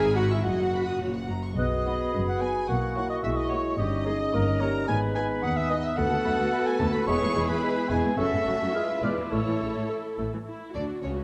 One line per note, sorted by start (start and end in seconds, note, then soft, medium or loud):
0.00 0.34 G#1 medium
0.00 0.35 G#2 medium
0.00 0.15 G#4 loud
0.00 0.16 G#5 medium
0.15 0.30 F#4 medium
0.15 0.30 F#5 medium
0.15 0.30 B5 medium
0.30 0.45 E4 medium
0.30 0.45 E5 medium
0.30 0.45 C#6 medium
0.43 0.91 F#1 medium
0.43 0.92 F#2 medium
0.43 1.30 F#4 medium
0.43 0.58 D#5 medium
0.43 1.30 F#5 medium
0.59 0.73 F#5 soft
0.73 0.87 B5 soft
0.88 1.02 D#6 soft
1.01 1.49 F#1 medium
1.01 1.28 A#2 medium
1.01 1.14 C#5 soft
1.15 1.30 F#5 soft
1.30 1.58 F#2 medium
1.30 1.44 A#5 soft
1.44 1.58 C#6 soft
1.57 2.02 B1 medium
1.57 2.02 B2 medium
1.57 2.65 B3 soft
1.57 2.10 B3 soft
1.57 2.65 F#4 soft
1.57 2.71 G#4 medium
1.57 2.23 D#5 medium
1.57 1.64 F#6 soft
1.85 2.06 B3 soft
1.85 2.06 D#4 soft
1.85 2.06 F#4 soft
1.85 2.06 B4 soft
1.85 2.67 B5 soft
2.13 2.58 F#1 medium
2.13 2.58 F#2 medium
2.13 2.68 B3 soft
2.28 2.41 F#5 medium
2.28 2.43 F#5 medium
2.41 2.62 B3 soft
2.41 2.62 D#4 medium
2.41 2.62 F#4 medium
2.41 2.62 B4 medium
2.41 2.69 G#5 medium
2.41 2.70 G#5 medium
2.68 3.12 B1 medium
2.68 3.13 B2 medium
2.68 3.23 A#3 soft
2.68 3.26 A#3 soft
2.68 3.23 E4 soft
2.68 3.78 F#4 soft
2.68 2.96 F#5 medium
2.68 2.95 F#5 medium
2.68 3.76 C#6 soft
2.96 3.17 A#3 medium
2.96 3.17 E4 soft
2.96 3.17 F#4 soft
2.96 3.17 C#5 soft
2.96 3.10 F#5 medium
2.96 3.09 F#5 medium
3.10 3.16 D#5 medium
3.10 3.16 D#5 soft
3.23 3.67 B1 medium
3.23 3.68 B2 medium
3.23 3.80 G#3 medium
3.23 3.78 A#3 soft
3.23 3.78 E4 medium
3.23 3.38 E5 medium
3.23 3.29 E5 medium
3.36 3.48 D#5 medium
3.36 3.51 D#5 medium
3.49 3.72 A#3 medium
3.49 3.72 E4 medium
3.49 3.72 F#4 soft
3.49 3.77 C#5 medium
3.49 3.72 C#5 medium
3.49 3.79 C#5 medium
3.77 4.22 G1 medium
3.77 4.22 G2 medium
3.77 4.06 G3 medium
3.77 4.89 C#4 medium
3.77 4.87 D#4 medium
3.77 4.06 G4 medium
3.77 4.62 D#5 medium
3.77 4.61 D#5 medium
3.77 4.33 D#6 medium
4.05 4.33 G#3 medium
4.05 4.27 A#3 medium
4.05 4.27 D#4 medium
4.05 4.19 G#4 medium
4.05 4.26 A#4 medium
4.05 4.26 C#5 soft
4.33 4.77 G1 medium
4.33 4.77 G2 medium
4.33 4.46 A#3 medium
4.33 4.61 A#4 medium
4.33 4.88 A#5 medium
4.61 4.92 G3 medium
4.61 4.82 A#3 medium
4.61 4.82 D#4 medium
4.61 4.88 A#4 medium
4.61 4.81 A#4 medium
4.61 4.81 C#5 medium
4.61 4.74 C#5 medium
4.61 4.89 A#5 medium
4.87 5.32 G#1 medium
4.87 5.32 G#2 medium
4.87 5.44 G#3 medium
4.87 5.97 B3 medium
4.87 5.96 D#4 medium
4.87 6.00 B4 medium
4.87 5.01 G#5 medium
4.87 4.97 G#5 medium
4.87 5.43 B5 medium
5.15 5.37 B3 medium
5.15 5.37 D#4 medium
5.15 5.36 G#4 medium
5.15 5.36 B4 medium
5.15 5.28 G#5 medium
5.15 5.24 G#5 medium
5.42 5.87 D#2 medium
5.42 5.98 B3 medium
5.42 5.58 F#5 medium
5.42 5.57 F#5 medium
5.42 5.98 D#6 medium
5.56 5.70 E5 medium
5.70 5.91 B3 medium
5.70 5.91 D#4 medium
5.70 5.91 G#4 medium
5.70 5.91 B4 medium
5.70 5.77 D#5 medium
5.70 5.84 D#5 medium
5.85 5.98 E5 medium
5.97 6.03 D2 medium
5.97 6.04 D2 medium
5.97 6.10 A3 medium
5.97 7.08 A3 medium
5.97 7.06 B3 medium
5.97 6.04 B3 medium
5.97 7.04 F#4 medium
5.97 7.03 A4 medium
5.97 7.07 A4 medium
5.97 8.14 B4 medium
5.97 6.68 F#5 medium
5.97 6.66 F#5 medium
5.97 6.04 B5 medium
6.12 6.17 D2 medium
6.12 6.18 A3 soft
6.25 6.31 D2 soft
6.25 6.31 D2 medium
6.25 6.31 F#3 soft
6.25 6.38 A3 medium
6.25 6.31 B5 medium
6.39 6.45 D2 medium
6.39 6.45 B3 medium
6.52 6.65 A3 soft
6.52 6.58 B5 medium
6.66 6.80 G#5 medium
6.66 6.79 G#5 medium
6.79 6.86 D2 medium
6.79 6.92 A3 medium
6.79 6.86 B3 medium
6.79 6.94 A5 medium
6.79 6.86 A5 medium
6.79 6.85 B5 soft
6.94 7.00 D2 soft
6.94 7.00 A3 medium
6.94 7.07 B4 medium
6.94 7.08 B5 medium
7.07 7.14 E1 medium
7.07 7.14 E2 medium
7.07 8.18 G#3 medium
7.07 7.20 G#3 medium
7.07 7.13 B3 medium
7.07 8.16 B3 medium
7.07 8.18 E4 medium
7.07 8.18 G#4 medium
7.07 7.62 G#4 medium
7.07 7.50 C#5 medium
7.07 7.14 B5 medium
7.07 7.48 C#6 medium
7.22 7.28 E2 soft
7.22 7.28 G#3 soft
7.35 7.41 E1 soft
7.35 7.42 E2 medium
7.35 7.41 E3 soft
7.35 7.48 G#3 soft
7.35 7.41 B5 soft
7.49 7.55 E2 medium
7.49 7.54 B3 medium
7.49 7.91 B4 medium
7.49 7.89 B5 medium
7.62 7.76 G#3 medium
7.62 7.98 B4 medium
7.62 7.69 B5 soft
7.89 7.96 E1 medium
7.89 7.96 E2 medium
7.89 8.03 G#3 soft
7.89 7.96 B3 medium
7.89 8.17 G#5 medium
7.89 7.99 G#5 medium
7.89 7.96 B5 soft
8.05 8.10 E2 soft
8.05 8.10 G#3 soft
8.17 8.24 F#1 medium
8.17 8.24 F#2 medium
8.17 8.24 F#3 medium
8.17 8.73 A3 medium
8.17 8.31 A3 medium
8.17 8.74 C#4 medium
8.17 8.73 F#4 soft
8.17 8.73 A4 soft
8.17 8.49 A4 medium
8.17 9.05 E5 medium
8.17 9.02 E5 medium
8.17 8.24 C#6 medium
8.32 8.38 F#2 soft
8.32 8.39 C#3 soft
8.45 8.52 F#1 soft
8.45 8.52 F#2 soft
8.45 8.52 C#3 soft
8.45 8.59 A3 soft
8.45 8.75 F#4 medium
8.45 8.52 C#6 soft
8.61 8.66 F#2 medium
8.61 8.67 F#3 medium
8.74 9.14 G#3 medium
8.74 8.88 G#3 soft
8.74 10.27 E4 medium
8.74 9.14 F4 medium
8.74 9.32 F4 soft
8.74 8.88 G#4 medium
8.74 9.32 B4 soft
8.74 8.81 F6 soft
9.02 9.09 E1 medium
9.02 9.09 E2 medium
9.02 9.16 G#3 soft
9.02 9.09 G#3 medium
9.02 9.17 B4 medium
9.02 9.11 D5 soft
9.02 9.31 D5 medium
9.02 9.09 F6 soft
9.18 9.24 E2 soft
9.18 9.24 E3 soft
9.31 9.38 A1 medium
9.31 9.38 A2 medium
9.31 10.16 A3 soft
9.31 9.45 A3 soft
9.31 9.38 A3 medium
9.31 10.16 E4 soft
9.31 10.26 E4 soft
9.31 10.26 A4 soft
9.31 10.17 A4 medium
9.31 9.88 C#5 medium
9.31 9.89 C#5 medium
9.31 9.38 E6 soft
9.47 9.53 A2 soft
9.47 9.53 E3 soft
9.59 9.67 A1 soft
9.59 9.67 A2 soft
9.59 9.67 C#3 soft
9.59 9.74 A3 soft
9.59 9.65 E6 soft
9.76 9.81 A2 medium
9.76 9.82 A3 medium
9.89 10.03 A3 soft
9.89 9.95 E6 soft
10.17 10.24 A1 medium
10.17 10.24 A2 medium
10.17 10.31 A3 soft
10.17 10.25 A3 medium
10.17 10.24 E6 soft
10.33 10.38 A2 soft
10.33 10.39 E3 soft
10.47 10.73 E4 soft
10.75 10.83 D2 soft
10.75 10.83 D3 medium
10.75 11.01 D4 soft
10.75 11.24 F#4 soft
10.75 10.83 D5 medium
11.02 11.24 C#2 soft
11.02 11.24 C#3 soft
11.02 11.24 C#4 soft
11.02 11.11 C#5 soft